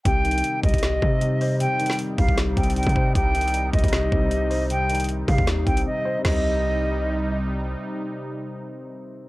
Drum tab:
CC |------------------------------------------------------------------------------------------------|------------------------------------------------------------------------------------------------|------------------------------------------------------------------------------------------------|------------------------------------------------------------------------------------------------|
HH |x-----------x---x---x---x-----------x--x--x--x--x-----------------------x-----------o-----------|x-----------x---x---x---x-----------o-----------x-----------x---x---x---x---x---x---------------|x-----------x---x---x---x-----------x--x--x--x--x-----------------------x-----------o-----------|x-----------x--x--x--x--x-----------o-----------x-----------x-----x-----------------------------|
SD |------------------------------------------------o-----------------------------------------------|------------------o-----------------------------o-----------------------------------------------|------------------------------------------------o-----------------------------------------------|------------------------------------------------o-----------------------------------------------|
FT |------------------------------------------------------------------------------------------------|------------------------------------------------------------------------------------------------|------------------------------------------------------------------------------------------------|------------------------------------------------------------------------------------------------|
BD |o-----------------------------------o-----o-----------------o-----------------------------------|------------------------------------o-----o-----------------o-----------------o-----o-----------|o-----------------------------------o-----o-----------------o-----------------------------------|------------------------------------o-----o-----------------o-----------------------------------|

CC |x-----------------------------------------------------------------------------------------------|------------------------------------------------------------------------------------------------|
HH |------------------------------------------------------------------------------------------------|------------------------------------------------------------------------------------------------|
SD |o-----------------------------------------------------------------------------------------------|------------------------------------------------------------------------------------------------|
FT |o-----------------------------------------------------------------------------------------------|------------------------------------------------------------------------------------------------|
BD |------------------------------------------------------------------------------------------------|------------------------------------------------------------------------------------------------|